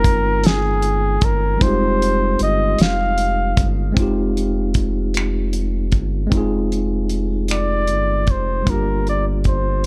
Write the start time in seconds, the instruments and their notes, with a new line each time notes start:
Already playing: tine electric piano G#3 C4 D#4 F4 G5, flugelhorn A#4
0.04 analog synth bass G1, kick, closed hi-hat
0.44 flugelhorn G#4, snare, closed hi-hat
0.82 closed hi-hat
1.21 analog synth bass G1, flugelhorn A#4, kick, closed hi-hat
1.57 tine electric piano G3 C4
1.61 analog synth bass F1, tine electric piano G#3 D#4 F4, flugelhorn C5, kick, closed hi-hat
1.67 tine electric piano G4
2.02 closed hi-hat
2.39 analog synth bass G1, flugelhorn D#5, closed hi-hat
2.79 analog synth bass F1, flugelhorn F5, snare, closed hi-hat
3.18 closed hi-hat
3.57 analog synth bass G1, kick, closed hi-hat
3.92 tine electric piano G#3 C4
3.97 analog synth bass F1, tine electric piano D#4 F4, kick, closed hi-hat
4.02 tine electric piano G4
4.37 closed hi-hat
4.74 kick, closed hi-hat
5.14 finger snap, closed hi-hat
5.53 closed hi-hat
5.92 analog synth bass G1, kick, closed hi-hat
6.27 tine electric piano G#3 C4
6.32 analog synth bass F1, tine electric piano D#4 F4, kick, closed hi-hat
6.37 tine electric piano G#4
6.72 closed hi-hat
7.10 closed hi-hat
7.48 flugelhorn D5, finger snap, closed hi-hat
7.87 analog synth bass G1, closed hi-hat
8.27 analog synth bass F1, kick, closed hi-hat
8.31 flugelhorn C5
8.62 tine electric piano G3 A#3
8.67 analog synth bass G1, tine electric piano D4 F4, flugelhorn A#4, kick, closed hi-hat
8.73 tine electric piano G4
9.07 flugelhorn D5, closed hi-hat
9.44 flugelhorn C5, kick, closed hi-hat